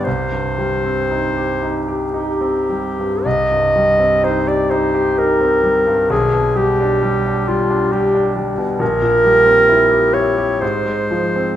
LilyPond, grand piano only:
\new Staff \with { instrumentName = "Grand piano" } { \time 3/4 \key c \minor \tempo 4 = 64 c,16 g,16 g16 c'16 ees'16 g'16 ees'16 g'16 ees'16 c'16 g16 g,16 | c,16 g,16 g16 c'16 ees'16 g'16 ees'16 g'16 ees'16 c'16 g16 g,16 | b,,16 b,16 g16 d'16 g16 d'16 g16 d'16 g16 d'16 g16 b,16 | bes,,16 bes,16 g16 c'16 e'16 g'16 e'16 g'16 aes,16 aes16 f16 c'16 | }